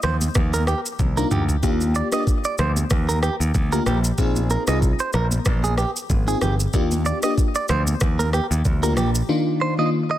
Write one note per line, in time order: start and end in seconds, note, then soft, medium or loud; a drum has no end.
0.02 0.28 D#2 medium
0.02 0.16 C5 medium
0.02 cross-stick medium
0.02 low conga medium
0.02 shaker soft
0.21 high conga medium
0.21 shaker medium
0.35 0.73 D#2 loud
0.35 kick loud
0.35 cross-stick loud
0.35 low conga medium
0.35 shaker medium
0.53 0.63 A#4 medium
0.53 high conga medium
0.53 shaker medium
0.67 0.80 G4 medium
0.67 cross-stick medium
0.67 shaker medium
0.86 shaker medium
0.99 1.23 C2 medium
0.99 kick medium
0.99 high tom medium
0.99 high conga medium
0.99 low conga medium
0.99 shaker medium
1.17 1.40 A#3 medium
1.17 1.40 D4 medium
1.17 1.40 D#4 medium
1.17 1.40 F4 medium
1.17 1.27 A#4 medium
1.17 shaker medium
1.31 1.55 D2 medium
1.31 1.44 G4 medium
1.31 mid tom medium
1.31 low conga medium
1.31 shaker medium
1.49 floor tom medium
1.49 shaker medium
1.63 2.00 D#2 medium
1.63 2.08 A#3 medium
1.63 2.08 D4 medium
1.63 2.08 F4 medium
1.63 2.08 G4 loud
1.63 kick loud
1.63 shaker medium
1.81 high conga medium
1.81 shaker soft
1.95 2.08 D5 medium
1.95 shaker medium
2.12 2.35 A#3 medium
2.12 2.35 D4 medium
2.12 2.36 F4 medium
2.12 2.36 G4 medium
2.12 2.23 D#5 medium
2.12 cross-stick medium
2.12 shaker medium
2.27 kick medium
2.27 shaker medium
2.44 2.55 D5 medium
2.44 shaker medium
2.58 2.83 D2 medium
2.58 2.71 C5 medium
2.58 cross-stick medium
2.58 low conga medium
2.58 shaker soft
2.76 high conga medium
2.76 shaker medium
2.90 3.28 D#2 loud
2.90 kick loud
2.90 cross-stick loud
2.90 low conga medium
2.90 shaker medium
3.09 3.18 A#4 medium
3.09 high conga medium
3.09 shaker medium
3.23 3.35 G4 medium
3.23 cross-stick medium
3.23 shaker medium
3.40 3.51 D#2 medium
3.40 shaker medium
3.55 3.79 D2 loud
3.55 kick medium
3.55 high conga medium
3.55 low conga medium
3.55 shaker medium
3.72 3.95 A#3 medium
3.72 3.95 D4 medium
3.72 3.95 F4 medium
3.72 3.95 G4 medium
3.72 3.82 A#4 medium
3.72 shaker medium
3.86 4.10 A#1 medium
3.86 3.99 G4 medium
3.86 cross-stick medium
3.86 low conga medium
3.86 shaker medium
4.04 shaker medium
4.18 4.56 A#1 loud
4.18 4.64 C4 medium
4.18 4.64 D#4 medium
4.18 4.64 F4 medium
4.18 4.64 G#4 medium
4.18 kick loud
4.18 shaker medium
4.36 high conga medium
4.36 shaker medium
4.50 4.63 A#4 medium
4.50 shaker medium
4.67 4.92 C2 medium
4.67 4.91 C4 medium
4.67 4.91 D#4 medium
4.67 4.91 F4 medium
4.67 4.91 G#4 medium
4.67 4.78 D#5 medium
4.67 cross-stick medium
4.67 shaker medium
4.82 kick medium
4.82 shaker medium
4.99 5.10 C5 medium
4.99 shaker medium
5.13 5.38 A#1 loud
5.13 5.27 A#4 medium
5.13 cross-stick medium
5.13 low conga medium
5.13 shaker soft
5.31 high conga medium
5.31 shaker medium
5.45 5.83 A#1 loud
5.45 kick loud
5.45 cross-stick loud
5.45 low conga medium
5.45 shaker medium
5.64 5.74 G#4 medium
5.64 high conga medium
5.64 shaker medium
5.78 5.90 G4 medium
5.78 cross-stick medium
5.78 shaker medium
5.96 shaker medium
6.10 6.34 G#1 loud
6.10 kick medium
6.10 high conga medium
6.10 low conga medium
6.10 shaker medium
6.27 6.51 C4 medium
6.27 6.51 D#4 medium
6.27 6.51 F4 medium
6.27 6.38 G#4 medium
6.27 6.51 G#4 medium
6.27 shaker soft
6.41 6.66 G1 medium
6.41 6.54 G4 medium
6.41 cross-stick medium
6.41 low conga medium
6.41 shaker medium
6.60 shaker medium
6.74 7.11 D#2 loud
6.74 7.19 A#3 medium
6.74 7.19 D4 medium
6.74 7.19 F4 medium
6.74 7.19 G4 loud
6.74 kick loud
6.74 shaker medium
6.91 high conga medium
6.91 shaker medium
7.05 7.18 D5 medium
7.05 shaker soft
7.23 7.46 A#3 medium
7.23 7.47 D4 medium
7.23 7.47 F4 medium
7.23 7.47 G4 medium
7.23 7.33 D#5 medium
7.23 cross-stick medium
7.23 shaker medium
7.38 kick medium
7.38 shaker medium
7.55 7.65 D5 medium
7.55 shaker medium
7.68 7.94 D2 medium
7.68 7.82 C5 medium
7.68 cross-stick medium
7.68 low conga medium
7.68 shaker soft
7.87 high conga medium
7.87 shaker medium
8.01 8.39 D#2 medium
8.01 kick loud
8.01 cross-stick loud
8.01 low conga medium
8.01 shaker medium
8.19 8.29 A#4 medium
8.19 high conga medium
8.19 shaker medium
8.33 8.46 G4 medium
8.33 cross-stick medium
8.33 shaker medium
8.51 8.62 D#2 medium
8.51 shaker medium
8.65 8.97 D2 loud
8.65 kick medium
8.65 high conga medium
8.65 low conga medium
8.65 shaker medium
8.82 9.06 A#3 medium
8.82 9.06 D4 medium
8.82 9.06 F4 medium
8.82 9.06 G4 medium
8.82 8.93 A#4 medium
8.82 shaker soft
8.97 9.21 A#1 medium
8.97 9.10 G4 medium
8.97 cross-stick medium
8.97 low conga medium
8.97 shaker medium
9.15 shaker medium
9.29 9.74 D#3 medium
9.29 9.74 A#3 medium
9.29 9.74 D4 medium
9.29 9.74 D#4 medium
9.29 9.74 F4 loud
9.61 9.73 C5 medium
9.78 10.02 D#3 medium
9.78 10.02 A#3 medium
9.78 10.02 D4 medium
9.78 10.02 D#4 medium
9.78 10.02 F4 medium
9.78 9.89 D#5 medium
10.11 10.19 D#5 medium